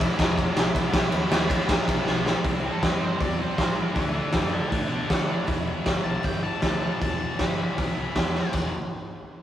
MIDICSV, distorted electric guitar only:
0, 0, Header, 1, 2, 480
1, 0, Start_track
1, 0, Key_signature, 1, "minor"
1, 0, Tempo, 377121
1, 1184, Time_signature, 4, 2, 24, 8
1, 4549, Tempo, 381437
1, 11912, End_track
2, 0, Start_track
2, 0, Title_t, "Distorted electric guitar"
2, 0, Program_c, 0, 30
2, 0, Note_on_c, 0, 40, 96
2, 0, Note_on_c, 0, 47, 90
2, 0, Note_on_c, 0, 52, 89
2, 192, Note_off_c, 0, 40, 0
2, 206, Note_off_c, 0, 47, 0
2, 208, Note_on_c, 0, 40, 112
2, 213, Note_off_c, 0, 52, 0
2, 221, Note_on_c, 0, 47, 118
2, 228, Note_on_c, 0, 52, 122
2, 675, Note_off_c, 0, 40, 0
2, 684, Note_off_c, 0, 47, 0
2, 690, Note_on_c, 0, 40, 90
2, 698, Note_off_c, 0, 52, 0
2, 699, Note_on_c, 0, 47, 102
2, 713, Note_on_c, 0, 52, 103
2, 907, Note_off_c, 0, 40, 0
2, 919, Note_off_c, 0, 47, 0
2, 922, Note_on_c, 0, 40, 88
2, 928, Note_off_c, 0, 52, 0
2, 935, Note_on_c, 0, 47, 101
2, 944, Note_on_c, 0, 52, 101
2, 1153, Note_off_c, 0, 47, 0
2, 1158, Note_off_c, 0, 40, 0
2, 1168, Note_on_c, 0, 47, 105
2, 1169, Note_off_c, 0, 52, 0
2, 1180, Note_on_c, 0, 54, 120
2, 1183, Note_on_c, 0, 59, 112
2, 1627, Note_off_c, 0, 47, 0
2, 1636, Note_off_c, 0, 54, 0
2, 1642, Note_on_c, 0, 47, 92
2, 1646, Note_off_c, 0, 59, 0
2, 1651, Note_on_c, 0, 54, 97
2, 1662, Note_on_c, 0, 59, 102
2, 1886, Note_off_c, 0, 47, 0
2, 1893, Note_off_c, 0, 54, 0
2, 1902, Note_on_c, 0, 47, 92
2, 1907, Note_off_c, 0, 59, 0
2, 1908, Note_on_c, 0, 54, 93
2, 1922, Note_on_c, 0, 59, 94
2, 2114, Note_off_c, 0, 47, 0
2, 2121, Note_off_c, 0, 54, 0
2, 2130, Note_on_c, 0, 47, 117
2, 2136, Note_on_c, 0, 54, 105
2, 2141, Note_off_c, 0, 59, 0
2, 2156, Note_on_c, 0, 59, 117
2, 2598, Note_off_c, 0, 47, 0
2, 2602, Note_off_c, 0, 54, 0
2, 2613, Note_on_c, 0, 47, 84
2, 2617, Note_on_c, 0, 54, 93
2, 2621, Note_off_c, 0, 59, 0
2, 2636, Note_on_c, 0, 59, 88
2, 2839, Note_off_c, 0, 47, 0
2, 2846, Note_off_c, 0, 54, 0
2, 2849, Note_off_c, 0, 59, 0
2, 2854, Note_on_c, 0, 47, 86
2, 2861, Note_on_c, 0, 54, 92
2, 2864, Note_on_c, 0, 59, 97
2, 3084, Note_off_c, 0, 47, 0
2, 3087, Note_off_c, 0, 54, 0
2, 3089, Note_off_c, 0, 59, 0
2, 3095, Note_on_c, 0, 48, 102
2, 3117, Note_on_c, 0, 55, 104
2, 3120, Note_on_c, 0, 60, 104
2, 3306, Note_off_c, 0, 48, 0
2, 3320, Note_off_c, 0, 55, 0
2, 3321, Note_on_c, 0, 48, 79
2, 3335, Note_off_c, 0, 60, 0
2, 3336, Note_on_c, 0, 55, 91
2, 3350, Note_on_c, 0, 60, 91
2, 3538, Note_off_c, 0, 48, 0
2, 3553, Note_on_c, 0, 48, 85
2, 3556, Note_off_c, 0, 55, 0
2, 3556, Note_off_c, 0, 60, 0
2, 3571, Note_on_c, 0, 55, 98
2, 3571, Note_on_c, 0, 60, 97
2, 3765, Note_off_c, 0, 48, 0
2, 3780, Note_off_c, 0, 60, 0
2, 3780, Note_on_c, 0, 48, 70
2, 3781, Note_off_c, 0, 55, 0
2, 3795, Note_on_c, 0, 60, 92
2, 3796, Note_on_c, 0, 55, 85
2, 4015, Note_off_c, 0, 48, 0
2, 4029, Note_off_c, 0, 55, 0
2, 4031, Note_on_c, 0, 48, 98
2, 4044, Note_on_c, 0, 55, 108
2, 4046, Note_off_c, 0, 60, 0
2, 4061, Note_on_c, 0, 60, 114
2, 4264, Note_off_c, 0, 48, 0
2, 4279, Note_off_c, 0, 55, 0
2, 4280, Note_on_c, 0, 48, 75
2, 4288, Note_off_c, 0, 60, 0
2, 4294, Note_on_c, 0, 55, 88
2, 4303, Note_on_c, 0, 60, 83
2, 4512, Note_off_c, 0, 48, 0
2, 4520, Note_off_c, 0, 55, 0
2, 4527, Note_on_c, 0, 48, 69
2, 4529, Note_off_c, 0, 60, 0
2, 4535, Note_on_c, 0, 55, 92
2, 4544, Note_on_c, 0, 60, 83
2, 4730, Note_off_c, 0, 48, 0
2, 4745, Note_on_c, 0, 48, 84
2, 4746, Note_off_c, 0, 55, 0
2, 4758, Note_off_c, 0, 60, 0
2, 4761, Note_on_c, 0, 55, 80
2, 4773, Note_on_c, 0, 60, 92
2, 4978, Note_off_c, 0, 48, 0
2, 4983, Note_on_c, 0, 50, 102
2, 4986, Note_off_c, 0, 55, 0
2, 4991, Note_on_c, 0, 57, 101
2, 4996, Note_off_c, 0, 60, 0
2, 5001, Note_on_c, 0, 62, 110
2, 5229, Note_off_c, 0, 50, 0
2, 5238, Note_off_c, 0, 57, 0
2, 5244, Note_on_c, 0, 50, 78
2, 5248, Note_off_c, 0, 62, 0
2, 5253, Note_on_c, 0, 57, 95
2, 5263, Note_on_c, 0, 62, 92
2, 5475, Note_off_c, 0, 50, 0
2, 5490, Note_on_c, 0, 50, 84
2, 5493, Note_off_c, 0, 57, 0
2, 5498, Note_off_c, 0, 62, 0
2, 5508, Note_on_c, 0, 57, 89
2, 5514, Note_on_c, 0, 62, 94
2, 5711, Note_off_c, 0, 50, 0
2, 5722, Note_off_c, 0, 57, 0
2, 5726, Note_off_c, 0, 62, 0
2, 5726, Note_on_c, 0, 50, 82
2, 5738, Note_on_c, 0, 57, 87
2, 5741, Note_on_c, 0, 62, 84
2, 5947, Note_off_c, 0, 50, 0
2, 5962, Note_off_c, 0, 57, 0
2, 5963, Note_on_c, 0, 50, 99
2, 5977, Note_on_c, 0, 57, 100
2, 5979, Note_off_c, 0, 62, 0
2, 5994, Note_on_c, 0, 62, 109
2, 6202, Note_off_c, 0, 50, 0
2, 6217, Note_on_c, 0, 50, 78
2, 6218, Note_off_c, 0, 57, 0
2, 6220, Note_off_c, 0, 62, 0
2, 6233, Note_on_c, 0, 57, 79
2, 6235, Note_on_c, 0, 62, 82
2, 6428, Note_off_c, 0, 50, 0
2, 6443, Note_on_c, 0, 50, 85
2, 6445, Note_off_c, 0, 57, 0
2, 6454, Note_off_c, 0, 62, 0
2, 6460, Note_on_c, 0, 57, 80
2, 6469, Note_on_c, 0, 62, 104
2, 6661, Note_off_c, 0, 50, 0
2, 6670, Note_off_c, 0, 57, 0
2, 6676, Note_on_c, 0, 50, 82
2, 6680, Note_off_c, 0, 62, 0
2, 6685, Note_on_c, 0, 57, 84
2, 6695, Note_on_c, 0, 62, 85
2, 6913, Note_on_c, 0, 40, 93
2, 6915, Note_off_c, 0, 50, 0
2, 6920, Note_off_c, 0, 57, 0
2, 6925, Note_off_c, 0, 62, 0
2, 6926, Note_on_c, 0, 47, 100
2, 6939, Note_on_c, 0, 52, 113
2, 7151, Note_off_c, 0, 40, 0
2, 7151, Note_off_c, 0, 47, 0
2, 7156, Note_on_c, 0, 40, 75
2, 7166, Note_on_c, 0, 47, 88
2, 7174, Note_off_c, 0, 52, 0
2, 7179, Note_on_c, 0, 52, 97
2, 7384, Note_off_c, 0, 40, 0
2, 7386, Note_off_c, 0, 47, 0
2, 7389, Note_on_c, 0, 40, 81
2, 7401, Note_on_c, 0, 47, 88
2, 7402, Note_off_c, 0, 52, 0
2, 7407, Note_on_c, 0, 52, 84
2, 7640, Note_off_c, 0, 40, 0
2, 7645, Note_on_c, 0, 40, 77
2, 7651, Note_off_c, 0, 47, 0
2, 7666, Note_on_c, 0, 47, 89
2, 7670, Note_off_c, 0, 52, 0
2, 7675, Note_on_c, 0, 52, 87
2, 7868, Note_off_c, 0, 40, 0
2, 7873, Note_off_c, 0, 47, 0
2, 7873, Note_on_c, 0, 40, 107
2, 7888, Note_on_c, 0, 47, 95
2, 7894, Note_off_c, 0, 52, 0
2, 7899, Note_on_c, 0, 52, 106
2, 8123, Note_off_c, 0, 40, 0
2, 8128, Note_on_c, 0, 40, 79
2, 8131, Note_off_c, 0, 47, 0
2, 8142, Note_off_c, 0, 52, 0
2, 8146, Note_on_c, 0, 47, 77
2, 8147, Note_on_c, 0, 52, 94
2, 8366, Note_off_c, 0, 40, 0
2, 8370, Note_off_c, 0, 47, 0
2, 8371, Note_on_c, 0, 40, 84
2, 8384, Note_off_c, 0, 52, 0
2, 8385, Note_on_c, 0, 47, 84
2, 8389, Note_on_c, 0, 52, 88
2, 8609, Note_off_c, 0, 40, 0
2, 8610, Note_off_c, 0, 47, 0
2, 8614, Note_on_c, 0, 40, 69
2, 8625, Note_on_c, 0, 47, 90
2, 8629, Note_off_c, 0, 52, 0
2, 8634, Note_on_c, 0, 52, 92
2, 8842, Note_off_c, 0, 40, 0
2, 8848, Note_off_c, 0, 47, 0
2, 8857, Note_on_c, 0, 40, 95
2, 8863, Note_off_c, 0, 52, 0
2, 8863, Note_on_c, 0, 47, 95
2, 8878, Note_on_c, 0, 52, 106
2, 9075, Note_off_c, 0, 40, 0
2, 9090, Note_on_c, 0, 40, 84
2, 9092, Note_off_c, 0, 47, 0
2, 9097, Note_off_c, 0, 52, 0
2, 9107, Note_on_c, 0, 47, 89
2, 9112, Note_on_c, 0, 52, 91
2, 9315, Note_off_c, 0, 40, 0
2, 9330, Note_off_c, 0, 47, 0
2, 9330, Note_on_c, 0, 40, 80
2, 9345, Note_off_c, 0, 52, 0
2, 9345, Note_on_c, 0, 47, 92
2, 9360, Note_on_c, 0, 52, 98
2, 9547, Note_off_c, 0, 40, 0
2, 9558, Note_off_c, 0, 47, 0
2, 9562, Note_on_c, 0, 40, 78
2, 9570, Note_off_c, 0, 52, 0
2, 9573, Note_on_c, 0, 47, 75
2, 9585, Note_on_c, 0, 52, 80
2, 9805, Note_off_c, 0, 40, 0
2, 9821, Note_on_c, 0, 40, 91
2, 9824, Note_off_c, 0, 47, 0
2, 9827, Note_off_c, 0, 52, 0
2, 9840, Note_on_c, 0, 47, 98
2, 9842, Note_on_c, 0, 52, 99
2, 10050, Note_off_c, 0, 40, 0
2, 10065, Note_on_c, 0, 40, 72
2, 10066, Note_off_c, 0, 47, 0
2, 10069, Note_off_c, 0, 52, 0
2, 10082, Note_on_c, 0, 47, 85
2, 10085, Note_on_c, 0, 52, 79
2, 10295, Note_off_c, 0, 40, 0
2, 10305, Note_off_c, 0, 47, 0
2, 10310, Note_on_c, 0, 40, 81
2, 10316, Note_off_c, 0, 52, 0
2, 10321, Note_on_c, 0, 47, 79
2, 10331, Note_on_c, 0, 52, 91
2, 10532, Note_off_c, 0, 40, 0
2, 10541, Note_off_c, 0, 47, 0
2, 10547, Note_on_c, 0, 40, 80
2, 10556, Note_off_c, 0, 52, 0
2, 10557, Note_on_c, 0, 47, 84
2, 10571, Note_on_c, 0, 52, 88
2, 10773, Note_off_c, 0, 40, 0
2, 10778, Note_off_c, 0, 47, 0
2, 10785, Note_off_c, 0, 52, 0
2, 10794, Note_on_c, 0, 40, 94
2, 10795, Note_on_c, 0, 47, 92
2, 10810, Note_on_c, 0, 52, 103
2, 10983, Note_off_c, 0, 40, 0
2, 10983, Note_off_c, 0, 47, 0
2, 10991, Note_off_c, 0, 52, 0
2, 11912, End_track
0, 0, End_of_file